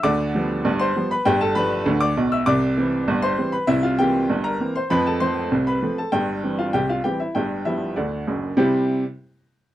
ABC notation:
X:1
M:2/4
L:1/16
Q:1/4=98
K:C
V:1 name="Upright piano"
[dd']4- [dd'] [cc']2 [Bb] | [Gg] [Aa] [Bb]3 [dd']2 [ee'] | [dd']4- [dd'] [cc']2 [Bb] | [Ee] [Ff] [Gg]3 [_B_b]2 [cc'] |
[Bb] [Aa] [cc']3 [Bb]2 [Aa] | [Gg]3 [Ff] [Gg] [Ff] [Gg] [Ee] | [Gg]2 [Ee]2 [Dd]4 | [C,G,EGc]2 z6 |]
V:2 name="Upright piano" clef=bass
[D,,D,]2 [F,G,B,]2 [G,,,G,,]2 [F,G,B,]2 | [G,,,G,,]2 [F,G,D]2 [D,,D,]2 [B,,,B,,]2 | [C,,C,]2 [E,G,C]2 [G,,,G,,]2 [E,G,C]2 | [C,,C,]2 [E,_B,C]2 [G,,,G,,]2 [E,B,C]2 |
[F,,F,]2 [F,A,C]2 [C,,C,]2 [F,A,C]2 | [G,,,G,,]2 [E,G,C]2 [C,,C,]2 [E,G,C]2 | [G,,,G,,]2 [F,G,B,]2 [D,,D,]2 [^F,,,^F,,]2 | z8 |]